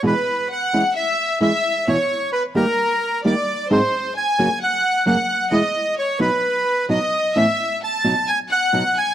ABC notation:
X:1
M:4/4
L:1/8
Q:1/4=131
K:E
V:1 name="Bandoneon"
B2 f2 e2 e2 | c2 B ^A3 =d2 | ^B2 g2 f2 f2 | d2 c B3 d2 |
e2 a2 g f2 g |]
V:2 name="Violin section"
B2 f2 e2 e2 | c2 B ^A3 =d2 | ^B2 g2 f2 f2 | d2 c B3 d2 |
e2 a2 g f2 g |]
V:3 name="Nylon-string guitar"
[E,,B,,E,G,B,F] z2 [E,G,CE] z2 [E,G,CE] z | [E,,B,,E,B,EF] z2 [D,=G,^A,D=G] z2 [D,G,A,DG] z | [G,,D,F,^B,DG] z2 [F,,C,F,^A,CF] z2 [F,,C,F,A,CF] z | [B,,E,G,B,E] z2 [B,,F,B,DF] z2 [B,,F,B,DF] z |
[A,,E,B,CE] z2 [B,,F,B,DF] z2 [B,,F,B,DF] z |]